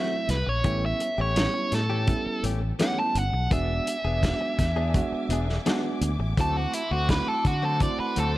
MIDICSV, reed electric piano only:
0, 0, Header, 1, 2, 480
1, 0, Start_track
1, 0, Tempo, 716846
1, 433, Time_signature, 4, 2, 24, 8
1, 5611, End_track
2, 0, Start_track
2, 0, Title_t, "Reed electric piano"
2, 0, Program_c, 0, 4
2, 0, Note_on_c, 0, 54, 77
2, 0, Note_on_c, 0, 57, 62
2, 0, Note_on_c, 0, 60, 73
2, 0, Note_on_c, 0, 64, 83
2, 244, Note_off_c, 0, 54, 0
2, 244, Note_off_c, 0, 57, 0
2, 246, Note_off_c, 0, 60, 0
2, 246, Note_off_c, 0, 64, 0
2, 431, Note_on_c, 0, 55, 67
2, 434, Note_on_c, 0, 59, 66
2, 435, Note_on_c, 0, 61, 61
2, 437, Note_on_c, 0, 64, 79
2, 723, Note_off_c, 0, 55, 0
2, 725, Note_off_c, 0, 59, 0
2, 725, Note_off_c, 0, 61, 0
2, 726, Note_off_c, 0, 64, 0
2, 910, Note_on_c, 0, 55, 77
2, 910, Note_on_c, 0, 59, 59
2, 914, Note_on_c, 0, 61, 68
2, 915, Note_on_c, 0, 64, 80
2, 1203, Note_off_c, 0, 55, 0
2, 1203, Note_off_c, 0, 59, 0
2, 1205, Note_off_c, 0, 61, 0
2, 1205, Note_off_c, 0, 64, 0
2, 1384, Note_on_c, 0, 55, 80
2, 1385, Note_on_c, 0, 59, 73
2, 1389, Note_on_c, 0, 61, 66
2, 1395, Note_on_c, 0, 64, 84
2, 1680, Note_off_c, 0, 55, 0
2, 1680, Note_off_c, 0, 59, 0
2, 1682, Note_off_c, 0, 61, 0
2, 1685, Note_off_c, 0, 64, 0
2, 1870, Note_on_c, 0, 55, 70
2, 1873, Note_on_c, 0, 59, 73
2, 1876, Note_on_c, 0, 61, 66
2, 1878, Note_on_c, 0, 64, 77
2, 2163, Note_off_c, 0, 55, 0
2, 2165, Note_off_c, 0, 59, 0
2, 2166, Note_off_c, 0, 61, 0
2, 2167, Note_off_c, 0, 64, 0
2, 2348, Note_on_c, 0, 56, 68
2, 2352, Note_on_c, 0, 59, 66
2, 2352, Note_on_c, 0, 62, 64
2, 2357, Note_on_c, 0, 66, 76
2, 2642, Note_off_c, 0, 56, 0
2, 2644, Note_off_c, 0, 59, 0
2, 2644, Note_off_c, 0, 62, 0
2, 2647, Note_off_c, 0, 66, 0
2, 2824, Note_on_c, 0, 56, 69
2, 2828, Note_on_c, 0, 59, 67
2, 2832, Note_on_c, 0, 62, 67
2, 2833, Note_on_c, 0, 66, 71
2, 3120, Note_off_c, 0, 56, 0
2, 3122, Note_off_c, 0, 59, 0
2, 3124, Note_off_c, 0, 62, 0
2, 3125, Note_off_c, 0, 66, 0
2, 3311, Note_on_c, 0, 59, 82
2, 3312, Note_on_c, 0, 56, 92
2, 3315, Note_on_c, 0, 62, 75
2, 3317, Note_on_c, 0, 66, 101
2, 3603, Note_off_c, 0, 59, 0
2, 3604, Note_off_c, 0, 56, 0
2, 3605, Note_off_c, 0, 62, 0
2, 3607, Note_off_c, 0, 66, 0
2, 3790, Note_on_c, 0, 56, 95
2, 3791, Note_on_c, 0, 59, 79
2, 3796, Note_on_c, 0, 62, 79
2, 3798, Note_on_c, 0, 66, 97
2, 4083, Note_off_c, 0, 56, 0
2, 4084, Note_off_c, 0, 59, 0
2, 4086, Note_off_c, 0, 62, 0
2, 4087, Note_off_c, 0, 66, 0
2, 4269, Note_on_c, 0, 57, 65
2, 4273, Note_on_c, 0, 60, 62
2, 4277, Note_on_c, 0, 64, 63
2, 4282, Note_on_c, 0, 66, 77
2, 4562, Note_off_c, 0, 57, 0
2, 4564, Note_off_c, 0, 60, 0
2, 4566, Note_off_c, 0, 64, 0
2, 4569, Note_off_c, 0, 66, 0
2, 4748, Note_on_c, 0, 57, 76
2, 4751, Note_on_c, 0, 60, 64
2, 4754, Note_on_c, 0, 64, 67
2, 4759, Note_on_c, 0, 66, 76
2, 5042, Note_off_c, 0, 57, 0
2, 5043, Note_off_c, 0, 60, 0
2, 5045, Note_off_c, 0, 64, 0
2, 5047, Note_off_c, 0, 66, 0
2, 5226, Note_on_c, 0, 57, 73
2, 5232, Note_on_c, 0, 60, 75
2, 5234, Note_on_c, 0, 64, 73
2, 5235, Note_on_c, 0, 66, 84
2, 5521, Note_off_c, 0, 57, 0
2, 5523, Note_off_c, 0, 60, 0
2, 5524, Note_off_c, 0, 64, 0
2, 5525, Note_off_c, 0, 66, 0
2, 5611, End_track
0, 0, End_of_file